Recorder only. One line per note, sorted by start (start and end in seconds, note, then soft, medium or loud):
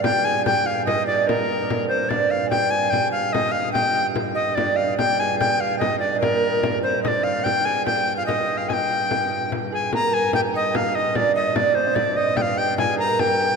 0.03 0.26 G5 loud
0.25 0.45 G#5 medium
0.45 0.68 G5 medium
0.66 0.85 F5 medium
0.86 1.06 D#5 medium
1.07 1.29 D5 medium
1.27 1.88 A#4 medium
1.89 2.11 C5 medium
2.09 2.32 D5 medium
2.31 2.49 F5 medium
2.50 2.72 G5 loud
2.71 2.92 G#5 medium
2.90 3.11 G5 medium
3.11 3.34 F5 medium
3.33 3.53 D#5 medium
3.52 3.72 F5 medium
3.72 4.06 G5 loud
4.35 4.57 D#5 medium
4.55 4.78 D5 medium
4.76 4.97 F5 medium
4.97 5.21 G5 loud
5.20 5.39 G#5 medium
5.39 5.62 G5 medium
5.60 5.78 F5 medium
5.79 5.99 D#5 medium
5.99 6.20 D5 medium
6.20 6.79 A#4 medium
6.83 7.02 C5 medium
7.03 7.09 D#5 medium
7.08 7.25 D5 medium
7.24 7.45 F5 medium
7.44 7.67 G5 medium
7.65 7.85 G#5 medium
7.86 8.15 G5 medium
8.17 8.26 F5 medium
8.26 8.59 D#5 medium
8.57 8.70 F5 medium
8.69 8.74 G#5 medium
8.73 9.51 G5 medium
9.74 9.92 G#5 medium
9.94 10.15 A#5 loud
10.14 10.34 G#5 medium
10.35 10.41 G5 medium
10.55 10.78 D#5 medium
10.76 10.97 F5 medium
10.95 11.17 D#5 medium
11.16 11.35 D5 medium
11.35 11.57 D#5 medium
11.56 11.77 D5 medium
11.75 11.97 C5 medium
11.95 12.18 D5 medium
12.16 12.38 D#5 medium
12.37 12.43 G5 medium
12.42 12.59 F5 loud
12.58 12.77 G5 medium
12.78 12.97 G#5 medium
12.99 13.21 A#5 medium
13.20 13.56 G5 medium